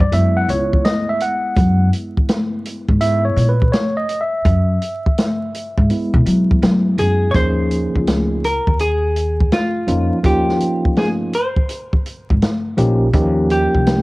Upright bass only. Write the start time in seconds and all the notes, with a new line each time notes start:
0.00 G2
0.12 F#2
0.49 C#2
1.56 F#2
2.89 G#2
3.36 A#2
4.45 F#2
5.77 G#2
6.14 B2
6.26 F#3
6.62 F#3
6.98 F#2
7.35 D#2
7.96 C#2
8.67 D#2
9.88 F2
10.24 D#2
12.30 G#1
12.77 A#1
13.13 D#2
13.74 C2